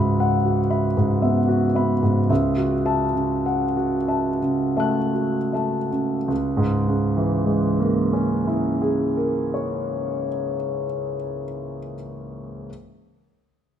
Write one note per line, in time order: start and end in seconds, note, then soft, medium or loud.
0.00 2.26 C#2 soft
0.00 0.34 G#2 soft
0.00 0.45 F#4 soft
0.00 0.70 E5 soft
0.00 0.70 B5 soft
0.20 0.59 F#5 soft
0.45 0.85 F#4 soft
0.70 0.93 E5 soft
0.70 0.93 B5 soft
0.97 1.39 G#2 soft
1.22 1.65 B3 soft
1.22 1.65 E5 soft
1.48 1.92 F#4 soft
1.75 2.19 B3 soft
1.75 2.00 E5 soft
1.75 2.00 B5 soft
2.03 2.30 G#2 soft
2.30 6.25 C#2 soft
2.30 2.74 E5 soft
2.57 3.03 F#4 soft
2.85 3.12 E5 soft
2.85 3.12 A5 soft
3.14 3.64 C#3 soft
3.46 3.97 F#5 soft
3.77 4.29 F#4 soft
4.08 4.39 E5 soft
4.08 4.39 A5 soft
4.42 4.98 C#3 soft
4.77 5.37 A3 soft
4.77 5.36 E5 soft
4.77 5.53 A5 soft
4.77 6.26 F#6 soft
5.14 5.77 F#4 soft
5.53 6.15 A3 soft
5.53 5.88 E5 soft
5.53 5.89 A5 soft
5.92 6.29 C#3 soft
6.28 10.27 C#2 soft
6.57 10.56 G#2 soft
6.88 10.86 C#3 soft
7.17 11.16 E3 soft
7.46 11.44 G#3 soft
7.80 11.79 A#3 soft
8.13 11.95 C#4 soft
8.47 11.95 E4 soft
8.82 11.94 G#4 soft
9.17 11.95 A#4 soft
9.54 11.95 C#5 soft